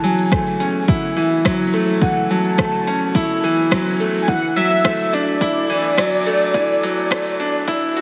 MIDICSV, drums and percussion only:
0, 0, Header, 1, 2, 480
1, 0, Start_track
1, 0, Key_signature, 3, "minor"
1, 0, Tempo, 566038
1, 1713, Time_signature, 4, 2, 24, 8
1, 6793, End_track
2, 0, Start_track
2, 0, Title_t, "Drums"
2, 34, Note_on_c, 9, 82, 59
2, 119, Note_off_c, 9, 82, 0
2, 155, Note_on_c, 9, 82, 29
2, 240, Note_off_c, 9, 82, 0
2, 269, Note_on_c, 9, 36, 104
2, 275, Note_on_c, 9, 37, 76
2, 354, Note_off_c, 9, 36, 0
2, 360, Note_off_c, 9, 37, 0
2, 394, Note_on_c, 9, 82, 42
2, 479, Note_off_c, 9, 82, 0
2, 512, Note_on_c, 9, 82, 63
2, 597, Note_off_c, 9, 82, 0
2, 749, Note_on_c, 9, 36, 107
2, 753, Note_on_c, 9, 82, 39
2, 834, Note_off_c, 9, 36, 0
2, 838, Note_off_c, 9, 82, 0
2, 993, Note_on_c, 9, 82, 53
2, 1078, Note_off_c, 9, 82, 0
2, 1230, Note_on_c, 9, 36, 103
2, 1234, Note_on_c, 9, 37, 87
2, 1234, Note_on_c, 9, 82, 41
2, 1314, Note_off_c, 9, 36, 0
2, 1319, Note_off_c, 9, 37, 0
2, 1319, Note_off_c, 9, 82, 0
2, 1471, Note_on_c, 9, 82, 58
2, 1556, Note_off_c, 9, 82, 0
2, 1709, Note_on_c, 9, 36, 96
2, 1711, Note_on_c, 9, 82, 34
2, 1794, Note_off_c, 9, 36, 0
2, 1796, Note_off_c, 9, 82, 0
2, 1953, Note_on_c, 9, 82, 58
2, 2038, Note_off_c, 9, 82, 0
2, 2072, Note_on_c, 9, 82, 29
2, 2156, Note_off_c, 9, 82, 0
2, 2190, Note_on_c, 9, 36, 103
2, 2194, Note_on_c, 9, 37, 84
2, 2275, Note_off_c, 9, 36, 0
2, 2279, Note_off_c, 9, 37, 0
2, 2317, Note_on_c, 9, 82, 39
2, 2401, Note_off_c, 9, 82, 0
2, 2435, Note_on_c, 9, 82, 59
2, 2520, Note_off_c, 9, 82, 0
2, 2670, Note_on_c, 9, 36, 99
2, 2675, Note_on_c, 9, 82, 40
2, 2755, Note_off_c, 9, 36, 0
2, 2760, Note_off_c, 9, 82, 0
2, 2915, Note_on_c, 9, 82, 58
2, 3000, Note_off_c, 9, 82, 0
2, 3150, Note_on_c, 9, 36, 98
2, 3154, Note_on_c, 9, 37, 91
2, 3154, Note_on_c, 9, 82, 39
2, 3235, Note_off_c, 9, 36, 0
2, 3239, Note_off_c, 9, 37, 0
2, 3239, Note_off_c, 9, 82, 0
2, 3394, Note_on_c, 9, 82, 60
2, 3479, Note_off_c, 9, 82, 0
2, 3629, Note_on_c, 9, 36, 95
2, 3634, Note_on_c, 9, 82, 36
2, 3714, Note_off_c, 9, 36, 0
2, 3719, Note_off_c, 9, 82, 0
2, 3872, Note_on_c, 9, 82, 59
2, 3957, Note_off_c, 9, 82, 0
2, 3992, Note_on_c, 9, 82, 28
2, 4077, Note_off_c, 9, 82, 0
2, 4109, Note_on_c, 9, 36, 106
2, 4111, Note_on_c, 9, 37, 84
2, 4194, Note_off_c, 9, 36, 0
2, 4196, Note_off_c, 9, 37, 0
2, 4235, Note_on_c, 9, 82, 38
2, 4319, Note_off_c, 9, 82, 0
2, 4355, Note_on_c, 9, 82, 62
2, 4440, Note_off_c, 9, 82, 0
2, 4588, Note_on_c, 9, 36, 102
2, 4596, Note_on_c, 9, 82, 41
2, 4673, Note_off_c, 9, 36, 0
2, 4681, Note_off_c, 9, 82, 0
2, 4834, Note_on_c, 9, 82, 54
2, 4919, Note_off_c, 9, 82, 0
2, 5068, Note_on_c, 9, 36, 103
2, 5073, Note_on_c, 9, 37, 91
2, 5073, Note_on_c, 9, 82, 43
2, 5153, Note_off_c, 9, 36, 0
2, 5158, Note_off_c, 9, 37, 0
2, 5158, Note_off_c, 9, 82, 0
2, 5312, Note_on_c, 9, 82, 60
2, 5397, Note_off_c, 9, 82, 0
2, 5548, Note_on_c, 9, 36, 99
2, 5554, Note_on_c, 9, 82, 39
2, 5633, Note_off_c, 9, 36, 0
2, 5639, Note_off_c, 9, 82, 0
2, 5793, Note_on_c, 9, 82, 62
2, 5878, Note_off_c, 9, 82, 0
2, 5915, Note_on_c, 9, 82, 29
2, 6000, Note_off_c, 9, 82, 0
2, 6029, Note_on_c, 9, 36, 106
2, 6035, Note_on_c, 9, 37, 91
2, 6113, Note_off_c, 9, 36, 0
2, 6120, Note_off_c, 9, 37, 0
2, 6154, Note_on_c, 9, 82, 43
2, 6239, Note_off_c, 9, 82, 0
2, 6272, Note_on_c, 9, 82, 66
2, 6357, Note_off_c, 9, 82, 0
2, 6509, Note_on_c, 9, 36, 107
2, 6512, Note_on_c, 9, 82, 40
2, 6594, Note_off_c, 9, 36, 0
2, 6597, Note_off_c, 9, 82, 0
2, 6754, Note_on_c, 9, 82, 62
2, 6793, Note_off_c, 9, 82, 0
2, 6793, End_track
0, 0, End_of_file